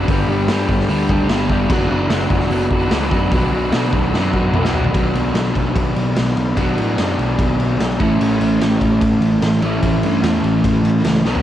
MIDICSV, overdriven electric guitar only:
0, 0, Header, 1, 2, 480
1, 0, Start_track
1, 0, Key_signature, 2, "minor"
1, 0, Tempo, 406229
1, 95, Time_signature, 4, 2, 24, 8
1, 13496, End_track
2, 0, Start_track
2, 0, Title_t, "Overdriven electric guitar"
2, 0, Program_c, 0, 29
2, 0, Note_on_c, 0, 62, 64
2, 0, Note_on_c, 0, 66, 74
2, 105, Note_on_c, 0, 55, 96
2, 112, Note_on_c, 0, 59, 109
2, 119, Note_off_c, 0, 62, 0
2, 123, Note_on_c, 0, 62, 112
2, 124, Note_off_c, 0, 66, 0
2, 129, Note_on_c, 0, 67, 106
2, 325, Note_off_c, 0, 67, 0
2, 339, Note_on_c, 0, 67, 71
2, 350, Note_off_c, 0, 62, 0
2, 354, Note_on_c, 0, 62, 72
2, 360, Note_off_c, 0, 59, 0
2, 365, Note_on_c, 0, 59, 66
2, 574, Note_off_c, 0, 55, 0
2, 588, Note_on_c, 0, 55, 70
2, 595, Note_off_c, 0, 59, 0
2, 598, Note_off_c, 0, 67, 0
2, 599, Note_on_c, 0, 59, 79
2, 604, Note_off_c, 0, 62, 0
2, 609, Note_on_c, 0, 62, 81
2, 612, Note_on_c, 0, 67, 88
2, 1044, Note_off_c, 0, 55, 0
2, 1058, Note_on_c, 0, 55, 109
2, 1059, Note_off_c, 0, 59, 0
2, 1064, Note_on_c, 0, 59, 105
2, 1066, Note_off_c, 0, 67, 0
2, 1070, Note_off_c, 0, 62, 0
2, 1075, Note_on_c, 0, 62, 97
2, 1080, Note_on_c, 0, 67, 103
2, 1285, Note_off_c, 0, 67, 0
2, 1300, Note_on_c, 0, 67, 89
2, 1311, Note_off_c, 0, 62, 0
2, 1316, Note_on_c, 0, 62, 70
2, 1318, Note_off_c, 0, 59, 0
2, 1323, Note_on_c, 0, 59, 61
2, 1522, Note_off_c, 0, 55, 0
2, 1536, Note_on_c, 0, 55, 75
2, 1540, Note_off_c, 0, 59, 0
2, 1544, Note_on_c, 0, 59, 87
2, 1546, Note_off_c, 0, 67, 0
2, 1547, Note_off_c, 0, 62, 0
2, 1552, Note_on_c, 0, 62, 74
2, 1560, Note_on_c, 0, 67, 84
2, 1762, Note_off_c, 0, 67, 0
2, 1776, Note_on_c, 0, 67, 74
2, 1786, Note_off_c, 0, 62, 0
2, 1790, Note_on_c, 0, 62, 64
2, 1794, Note_off_c, 0, 59, 0
2, 1799, Note_on_c, 0, 59, 59
2, 1997, Note_off_c, 0, 55, 0
2, 1997, Note_off_c, 0, 67, 0
2, 2011, Note_on_c, 0, 54, 90
2, 2012, Note_off_c, 0, 59, 0
2, 2017, Note_on_c, 0, 59, 107
2, 2021, Note_off_c, 0, 62, 0
2, 2026, Note_on_c, 0, 62, 112
2, 2034, Note_on_c, 0, 66, 121
2, 2241, Note_off_c, 0, 66, 0
2, 2246, Note_on_c, 0, 66, 82
2, 2255, Note_off_c, 0, 62, 0
2, 2259, Note_off_c, 0, 59, 0
2, 2260, Note_on_c, 0, 62, 74
2, 2263, Note_on_c, 0, 59, 55
2, 2473, Note_off_c, 0, 54, 0
2, 2478, Note_on_c, 0, 54, 77
2, 2480, Note_off_c, 0, 59, 0
2, 2485, Note_on_c, 0, 59, 83
2, 2486, Note_off_c, 0, 62, 0
2, 2491, Note_on_c, 0, 62, 86
2, 2498, Note_off_c, 0, 66, 0
2, 2503, Note_on_c, 0, 66, 75
2, 2947, Note_off_c, 0, 54, 0
2, 2952, Note_on_c, 0, 54, 101
2, 2962, Note_off_c, 0, 59, 0
2, 2967, Note_on_c, 0, 59, 103
2, 2968, Note_off_c, 0, 62, 0
2, 2973, Note_off_c, 0, 66, 0
2, 2973, Note_on_c, 0, 62, 96
2, 2977, Note_on_c, 0, 66, 111
2, 3190, Note_off_c, 0, 66, 0
2, 3194, Note_on_c, 0, 66, 77
2, 3203, Note_off_c, 0, 62, 0
2, 3208, Note_on_c, 0, 62, 68
2, 3216, Note_off_c, 0, 59, 0
2, 3220, Note_on_c, 0, 59, 62
2, 3436, Note_off_c, 0, 54, 0
2, 3441, Note_off_c, 0, 59, 0
2, 3441, Note_on_c, 0, 54, 75
2, 3446, Note_on_c, 0, 59, 86
2, 3449, Note_off_c, 0, 62, 0
2, 3453, Note_off_c, 0, 66, 0
2, 3454, Note_on_c, 0, 62, 82
2, 3457, Note_on_c, 0, 66, 78
2, 3674, Note_off_c, 0, 66, 0
2, 3678, Note_on_c, 0, 66, 78
2, 3690, Note_off_c, 0, 62, 0
2, 3695, Note_on_c, 0, 62, 66
2, 3697, Note_off_c, 0, 59, 0
2, 3702, Note_on_c, 0, 59, 63
2, 3909, Note_on_c, 0, 47, 97
2, 3915, Note_off_c, 0, 54, 0
2, 3919, Note_off_c, 0, 59, 0
2, 3920, Note_on_c, 0, 54, 99
2, 3924, Note_on_c, 0, 59, 120
2, 3925, Note_off_c, 0, 62, 0
2, 3927, Note_off_c, 0, 66, 0
2, 3929, Note_on_c, 0, 62, 112
2, 3932, Note_on_c, 0, 66, 114
2, 4140, Note_off_c, 0, 66, 0
2, 4154, Note_on_c, 0, 66, 75
2, 4157, Note_off_c, 0, 62, 0
2, 4164, Note_off_c, 0, 59, 0
2, 4171, Note_on_c, 0, 62, 72
2, 4178, Note_on_c, 0, 59, 61
2, 4384, Note_off_c, 0, 54, 0
2, 4396, Note_off_c, 0, 47, 0
2, 4396, Note_off_c, 0, 59, 0
2, 4399, Note_on_c, 0, 54, 71
2, 4405, Note_off_c, 0, 62, 0
2, 4410, Note_on_c, 0, 59, 78
2, 4414, Note_off_c, 0, 66, 0
2, 4419, Note_on_c, 0, 62, 82
2, 4428, Note_on_c, 0, 66, 88
2, 4872, Note_off_c, 0, 54, 0
2, 4880, Note_on_c, 0, 47, 92
2, 4881, Note_off_c, 0, 59, 0
2, 4885, Note_off_c, 0, 62, 0
2, 4886, Note_on_c, 0, 54, 103
2, 4889, Note_off_c, 0, 66, 0
2, 4895, Note_on_c, 0, 59, 104
2, 4899, Note_on_c, 0, 62, 111
2, 4904, Note_on_c, 0, 66, 110
2, 5103, Note_off_c, 0, 66, 0
2, 5117, Note_on_c, 0, 66, 87
2, 5118, Note_off_c, 0, 62, 0
2, 5130, Note_off_c, 0, 59, 0
2, 5133, Note_on_c, 0, 62, 68
2, 5144, Note_on_c, 0, 59, 65
2, 5341, Note_off_c, 0, 54, 0
2, 5355, Note_off_c, 0, 59, 0
2, 5356, Note_on_c, 0, 54, 75
2, 5358, Note_off_c, 0, 62, 0
2, 5362, Note_off_c, 0, 47, 0
2, 5365, Note_off_c, 0, 66, 0
2, 5369, Note_on_c, 0, 59, 79
2, 5372, Note_on_c, 0, 62, 70
2, 5379, Note_on_c, 0, 66, 75
2, 5585, Note_off_c, 0, 66, 0
2, 5597, Note_off_c, 0, 62, 0
2, 5599, Note_on_c, 0, 66, 76
2, 5610, Note_off_c, 0, 59, 0
2, 5612, Note_on_c, 0, 62, 65
2, 5624, Note_on_c, 0, 59, 60
2, 5826, Note_off_c, 0, 54, 0
2, 5828, Note_off_c, 0, 66, 0
2, 5834, Note_off_c, 0, 62, 0
2, 5839, Note_on_c, 0, 47, 90
2, 5840, Note_off_c, 0, 59, 0
2, 5848, Note_on_c, 0, 54, 92
2, 5858, Note_on_c, 0, 59, 107
2, 5863, Note_on_c, 0, 62, 97
2, 5864, Note_on_c, 0, 66, 103
2, 7747, Note_off_c, 0, 47, 0
2, 7753, Note_off_c, 0, 54, 0
2, 7762, Note_off_c, 0, 59, 0
2, 7762, Note_on_c, 0, 47, 85
2, 7764, Note_off_c, 0, 62, 0
2, 7765, Note_off_c, 0, 66, 0
2, 7767, Note_on_c, 0, 54, 93
2, 7777, Note_on_c, 0, 59, 88
2, 7777, Note_on_c, 0, 62, 106
2, 7781, Note_on_c, 0, 66, 106
2, 9435, Note_off_c, 0, 47, 0
2, 9438, Note_off_c, 0, 54, 0
2, 9443, Note_off_c, 0, 59, 0
2, 9443, Note_off_c, 0, 62, 0
2, 9443, Note_on_c, 0, 45, 78
2, 9445, Note_off_c, 0, 66, 0
2, 9452, Note_on_c, 0, 52, 90
2, 9459, Note_on_c, 0, 57, 96
2, 9468, Note_on_c, 0, 61, 97
2, 9472, Note_on_c, 0, 64, 99
2, 11355, Note_off_c, 0, 45, 0
2, 11360, Note_off_c, 0, 52, 0
2, 11363, Note_off_c, 0, 57, 0
2, 11367, Note_off_c, 0, 61, 0
2, 11369, Note_off_c, 0, 64, 0
2, 11370, Note_on_c, 0, 45, 85
2, 11379, Note_on_c, 0, 52, 91
2, 11386, Note_on_c, 0, 57, 99
2, 11391, Note_on_c, 0, 61, 95
2, 11397, Note_on_c, 0, 64, 102
2, 13276, Note_off_c, 0, 45, 0
2, 13280, Note_off_c, 0, 52, 0
2, 13284, Note_off_c, 0, 57, 0
2, 13286, Note_off_c, 0, 61, 0
2, 13290, Note_off_c, 0, 64, 0
2, 13295, Note_on_c, 0, 47, 93
2, 13304, Note_on_c, 0, 54, 91
2, 13315, Note_on_c, 0, 59, 96
2, 13319, Note_on_c, 0, 62, 98
2, 13496, Note_off_c, 0, 47, 0
2, 13496, Note_off_c, 0, 54, 0
2, 13496, Note_off_c, 0, 59, 0
2, 13496, Note_off_c, 0, 62, 0
2, 13496, End_track
0, 0, End_of_file